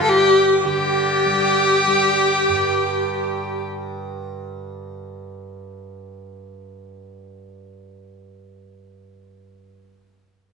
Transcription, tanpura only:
0.00 2.48 G2 medium
0.00 0.64 D3 medium
0.00 1.25 G3 medium
0.64 7.79 D3 medium
1.25 1.87 G3 medium
1.87 8.41 G3 medium
2.49 9.64 G2 medium

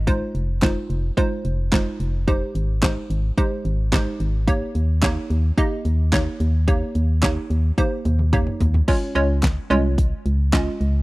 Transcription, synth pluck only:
0.07 0.37 G#3 medium
0.07 0.37 D#4 medium
0.07 0.37 F4 medium
0.07 0.37 C5 loud
0.62 0.92 G#3 medium
0.62 0.92 D#4 medium
0.62 0.92 F4 medium
0.62 0.92 C5 loud
1.17 1.47 G#3 loud
1.17 1.47 D#4 medium
1.17 1.47 F4 medium
1.17 1.47 C5 loud
1.72 2.02 G#3 medium
1.72 2.02 D#4 medium
1.72 2.03 F4 medium
1.72 2.03 C5 loud
2.27 2.57 G#3 medium
2.27 2.57 D#4 medium
2.27 2.58 G4 medium
2.27 2.58 C5 medium
2.83 3.13 G#3 medium
2.83 3.13 D#4 medium
2.83 3.13 G4 medium
2.83 3.13 C5 medium
3.38 3.68 G#3 medium
3.38 3.68 D#4 medium
3.38 3.68 G4 medium
3.38 3.68 C5 loud
3.93 4.23 G#3 medium
3.93 4.23 D#4 medium
3.93 4.23 G4 medium
3.93 4.23 C5 loud
4.47 4.78 A#3 medium
4.47 4.78 D#4 medium
4.47 4.78 G4 medium
4.47 4.78 C#5 loud
5.03 5.33 A#3 loud
5.03 5.33 D#4 medium
5.03 5.33 G4 medium
5.03 5.33 C#5 loud
5.57 5.88 A#3 loud
5.57 5.88 D#4 medium
5.57 5.88 G4 medium
5.57 5.88 D#5 loud
6.13 6.43 A#3 medium
6.13 6.43 D#4 medium
6.13 6.43 G4 medium
6.13 6.43 C#5 loud
6.68 6.98 A#3 medium
6.68 6.98 D#4 medium
6.68 6.98 G4 medium
6.68 6.98 C#5 medium
7.23 7.53 A#3 medium
7.23 7.53 D#4 medium
7.23 7.53 G4 medium
7.23 7.53 C#5 medium
7.78 8.08 A#3 medium
7.78 8.08 D#4 medium
7.78 8.08 G4 medium
7.78 8.08 C5 loud
8.33 8.63 A#3 medium
8.33 8.63 D#4 medium
8.33 8.63 G4 medium
8.33 8.63 C#5 loud
8.88 9.03 G#3 loud
8.88 9.03 C#4 medium
8.88 9.03 F4 medium
8.88 9.03 C#5 loud
9.15 9.45 G#3 medium
9.15 9.45 C#4 medium
9.15 9.45 F4 medium
9.15 9.46 C#5 medium
9.70 10.15 G#3 loud
9.70 10.15 C#4 medium
9.70 10.15 F4 medium
9.70 10.16 C#5 loud
10.53 10.98 G#3 loud
10.53 10.98 C#4 medium
10.53 10.98 F4 medium
10.53 10.98 D#5 loud

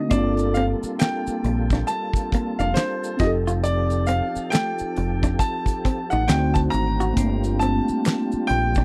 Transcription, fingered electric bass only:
0.12 0.73 G1 medium
0.83 muted fingered electric bass stroke soft
1.27 muted fingered electric bass stroke soft
1.44 1.82 A#1 medium
2.33 muted fingered electric bass stroke soft
2.59 2.74 F1 medium
3.21 4.20 F1 loud
4.36 muted fingered electric bass stroke soft
4.81 muted fingered electric bass stroke soft
4.98 5.35 F1 medium
5.86 muted fingered electric bass stroke soft
6.13 6.27 A1 medium
6.30 6.67 D2 loud
6.74 7.11 G#1 medium
7.18 7.79 G1 loud
7.89 muted fingered electric bass stroke soft
8.33 muted fingered electric bass stroke soft
8.50 8.85 A#1 loud

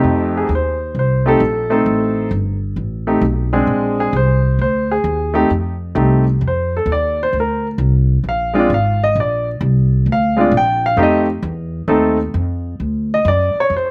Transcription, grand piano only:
0.00 0.46 F2 medium
0.00 0.46 A3 medium
0.00 0.47 C4 medium
0.00 0.47 D#4 medium
0.00 0.47 G4 medium
0.37 0.51 G#4 medium
0.55 0.95 C5 medium
0.99 1.27 C5 medium
1.26 1.39 A3 medium
1.26 1.39 C4 medium
1.26 1.40 D#4 medium
1.26 1.40 G4 medium
1.26 1.70 A4 medium
1.70 2.28 A3 medium
1.70 2.28 C4 medium
1.70 2.29 D#4 medium
1.70 2.29 A4 medium
3.07 3.21 A3 medium
3.07 3.21 C4 medium
3.07 3.21 D#4 medium
3.07 3.21 G4 medium
3.53 4.11 G#3 medium
3.53 4.11 C4 medium
3.53 4.11 D4 medium
3.53 3.99 G#4 medium
4.00 4.14 G#4 medium
4.16 4.58 C5 medium
4.61 4.90 C5 medium
4.91 5.33 G#4 medium
5.34 5.48 A3 medium
5.34 5.49 C4 medium
5.34 5.49 D#4 medium
5.34 5.49 G4 medium
5.95 6.23 A3 medium
5.95 6.23 C4 soft
5.95 6.24 D#4 soft
5.95 6.24 G4 medium
6.47 6.74 C5 medium
6.77 6.89 A4 medium
6.92 7.20 D5 medium
7.23 7.35 C5 medium
7.40 7.66 A#4 medium
8.29 8.56 F5 medium
8.54 8.68 G#3 medium
8.54 8.68 C4 medium
8.54 8.68 D4 medium
8.54 8.68 F4 medium
8.59 8.71 D5 medium
8.74 9.02 F5 medium
9.04 9.16 D#5 medium
9.20 9.48 D5 medium
10.12 10.39 F5 medium
10.37 10.50 G#3 medium
10.37 10.50 C4 medium
10.37 10.51 D4 medium
10.37 10.51 F4 medium
10.41 10.54 D5 medium
10.57 10.84 G5 medium
10.86 10.99 F5 medium
10.97 11.25 A3 medium
10.97 11.25 C4 medium
10.97 11.25 D#4 medium
10.97 11.26 G4 medium
11.03 11.20 D#5 medium
11.88 12.16 A3 medium
11.88 12.16 C4 medium
11.88 12.16 D#4 medium
11.88 12.17 A4 medium
13.14 13.27 D#5 medium
13.28 13.56 D5 medium
13.60 13.73 C#5 medium
13.76 13.91 C5 medium

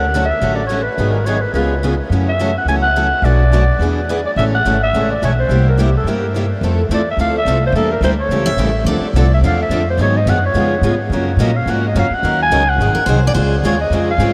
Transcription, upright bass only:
0.00 0.30 D2 medium
0.41 0.86 A1 medium
0.98 1.43 G#1 medium
1.54 1.99 C#2 medium
2.10 2.55 F#2 medium
2.65 3.11 C#2 medium
3.22 3.68 B1 medium
3.79 4.24 E2 medium
4.36 4.59 A1 loud
4.65 4.89 G#1 medium
4.93 5.17 A1 medium
5.22 5.45 B1 medium
5.49 5.94 C2 medium
6.04 6.49 G2 medium
6.61 6.89 F2 medium
6.89 7.16 E2 medium
7.17 7.45 D2 medium
7.45 7.72 C2 medium
7.72 8.00 E2 loud
8.01 8.29 D2 medium
8.29 8.56 C#2 medium
8.56 8.84 A1 medium
8.85 9.00 D2 medium
9.01 muted upright bass stroke soft
9.13 9.40 C2 medium
9.41 9.69 E2 medium
9.69 9.97 F2 medium
9.97 10.25 G#2 medium
10.26 10.53 F#2 medium
10.54 10.81 F2 medium
10.81 11.09 G#2 medium
11.10 11.36 F#2 medium
11.37 11.65 A#2 medium
11.66 11.94 G#2 medium
11.95 12.09 F#2 medium
12.10 muted upright bass stroke soft
12.23 12.50 D#2 medium
12.50 12.78 C#2 medium
12.78 12.94 G#1 medium
12.94 muted upright bass stroke soft
13.06 13.34 C2 medium
13.35 13.63 C#2 loud
13.63 13.89 D#2 medium
13.90 14.17 F2 medium
14.18 14.33 G#2 medium

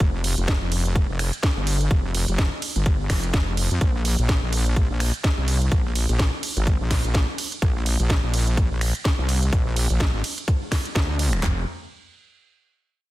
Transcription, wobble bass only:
0.00 0.36 F1 loud
0.38 0.59 F1 medium
0.62 1.07 F1 loud
1.09 1.31 F1 loud
1.57 1.89 G1 loud
1.91 2.26 F1 loud
2.28 2.50 F1 loud
2.76 3.08 G1 loud
3.10 3.32 F1 loud
3.34 3.69 F1 loud
3.71 3.80 F2 loud
3.81 4.17 A#1 loud
4.19 4.40 A#1 loud
4.43 4.88 A#1 medium
4.90 5.12 A#1 medium
5.38 5.70 C2 loud
5.72 6.07 A#1 loud
6.09 6.31 A#1 loud
6.57 6.78 G#1 loud
6.81 7.02 A#1 loud
7.04 7.26 A#1 loud
7.62 7.97 A#1 loud
8.00 8.21 A#1 loud
8.23 8.69 A#1 medium
8.71 8.93 A#1 loud
9.19 9.51 C2 loud
9.53 9.88 A#1 loud
9.90 10.12 A#1 loud
10.14 10.22 G#1 medium
10.95 11.41 D2 loud
11.43 11.65 F1 loud

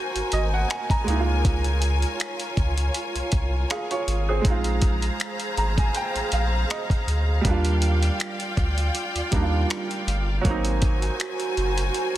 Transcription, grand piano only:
0.00 1.02 A#3 medium
0.00 1.03 C4 medium
0.00 1.05 D#4 medium
0.00 1.09 F#4 medium
0.33 0.52 D#5 medium
0.54 0.69 F#5 medium
0.71 0.89 G#5 medium
0.91 1.42 A#5 medium
1.04 4.02 G#3 medium
1.04 4.03 A#3 medium
1.10 3.67 D#4 medium
1.10 1.17 E4 medium
1.19 3.72 F4 medium
3.71 3.90 G#4 medium
3.71 3.90 F5 medium
3.91 4.27 F4 medium
3.91 4.26 C#5 medium
4.29 4.43 C4 medium
4.29 4.64 G#4 medium
4.42 7.39 G#3 medium
4.42 7.41 C4 medium
4.47 7.42 D#4 medium
4.47 7.44 F4 medium
5.58 5.77 A#5 medium
5.79 5.94 G#5 medium
5.96 6.30 G5 medium
6.33 6.68 F5 medium
6.71 7.41 D#5 medium
7.41 9.27 G3 medium
7.41 9.28 A#3 medium
7.47 9.30 D4 medium
7.47 9.31 F4 medium
9.31 10.44 G3 medium
9.31 10.43 A#3 medium
9.31 10.46 D4 soft
9.36 9.41 D#4 soft
9.42 10.50 F4 medium
10.41 12.17 F#3 medium
10.41 12.17 A#3 medium
10.47 12.17 C4 medium
10.47 12.17 D#4 medium

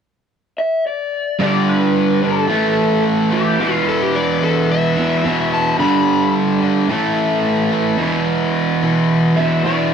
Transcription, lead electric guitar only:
0.58 0.86 E5 medium
0.87 1.41 D5 medium
1.42 1.67 D5 medium
1.69 2.24 B4 medium
2.24 3.02 A4 medium
3.33 3.73 G4 medium
3.73 3.84 F4 medium
9.36 9.64 E5 medium
9.64 9.94 D5 medium

